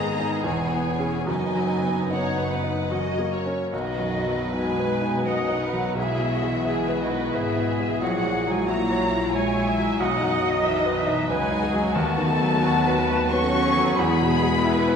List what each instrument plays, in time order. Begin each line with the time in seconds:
Already playing: double bass section G#1, grand piano G#2 D#3 B3 D#4 G#4, cello section G#2, viola section B3 D#4, violin section G#4 D#5 A#5
0.19 grand piano D#4
0.44 double bass section E1, grand piano E2, cello section E2, viola section E4, violin section C#5 G#5
0.73 grand piano B3
0.99 grand piano C#4 G#4
1.27 double bass section F#1, grand piano F#2, cello section F#2, viola section B3 D#4, violin section B4 D#5 G#5
1.55 grand piano F#3
1.83 grand piano B3
2.11 grand piano D#4, violin section C#5 F#5
2.38 grand piano B4
2.51 violin section B4
2.64 grand piano D#4
2.90 grand piano F#2, viola section C#4 F#4, violin section D#5
3.18 grand piano A#3
3.33 violin section C#5
3.46 grand piano C#4 C#5
3.71 double bass section B1, grand piano B1, cello section D#3, french horn section B3 F#4, violin section F#4 B4 D#5, flute D#5
3.99 grand piano F#2
4.26 grand piano F#3
4.52 cello section G#3, violin section B3 G#5, grand piano D#4, viola section B4, flute G#5
4.79 grand piano B4
5.02 grand piano D#4
5.26 cello section F#3, violin section C#4 A#4 F#5, grand piano B4, viola section D#5, flute F#5
5.49 grand piano D#4
5.63 violin section D#4, viola section B4
5.73 grand piano F#3
5.95 grand piano B1, double bass section B1, cello section E3, french horn section G#3 E4, violin section E4 G#4 E5, viola section G#4, flute E5
6.18 grand piano B2
6.32 violin section F#4
6.42 grand piano G#3
6.64 grand piano B3, violin section E4 G#4, viola section G#4
6.89 grand piano B4
7.00 cello section D#3, violin section F#4 D#5, viola section B4, flute D#5
7.11 grand piano B3
7.34 double bass section G#1, cello section E3, violin section E4 G#4 E5, viola section G#4, grand piano B4, flute E5
7.56 grand piano B3
7.68 violin section G#4, viola section G#4
7.80 grand piano G#3
8.01 double bass section A#1, grand piano A#1, cello section F#3, french horn section F#3, violin section F#4 F#5, flute F#5
8.24 grand piano A#2
8.47 grand piano F#3, cello section G#3
8.51 violin section G#5, flute G#5
8.68 cello section A#3, grand piano E4, violin section F#4 A#5, viola section F#4, flute A#5
8.91 grand piano C#5
9.02 viola section E4
9.11 grand piano E4
9.33 cello section G#3, violin section E4 G#5, grand piano C#5, viola section C#5, flute G#5
9.55 grand piano E4
9.67 viola section E5
9.78 grand piano F#3
9.99 grand piano B1, double bass section B1, cello section F#3, french horn section D#4, violin section D#4 F#5, viola section D#5, flute F#5
10.22 grand piano F#2
10.43 grand piano F#3
10.49 cello section D#3, violin section D#5, flute D#5
10.64 cello section E3, grand piano D#4, violin section D#4 E5, flute E5
10.82 cello section D#3, violin section D#5, flute D#5
10.86 grand piano B4
10.97 cello section E3, violin section E5, flute E5
11.07 grand piano D#4
11.29 double bass section C#2, cello section G#3, violin section C#4 F#4 G#5, viola section B4, grand piano B4, flute G#5
11.51 grand piano D#4
11.62 viola section G#4
11.73 grand piano F#3
11.94 double bass section D#2, grand piano D#2, french horn section F#3 B3, cello section A3, violin section B3 A5, viola section F#4, flute A5
12.18 grand piano D#3
12.29 viola section A4
12.41 grand piano F#3
12.61 violin section F#4 B4, viola section F#4, grand piano F#4
12.86 grand piano B4
12.97 viola section B4
13.10 grand piano F#4
13.30 cello section C#4, violin section F#4 A4 C#6, viola section F#4, grand piano B4, flute C#6
13.55 grand piano F#4
13.64 violin section G#4, viola section A4
13.77 grand piano F#3
13.96 double bass section E2, grand piano E2, french horn section G#3 E4, cello section B3, violin section G#4 B5, viola section G#4, flute B5
14.22 grand piano B2
14.29 violin section G#4
14.43 grand piano G#3
14.62 violin section E4 G#4, grand piano E4, viola section B4
14.87 grand piano B4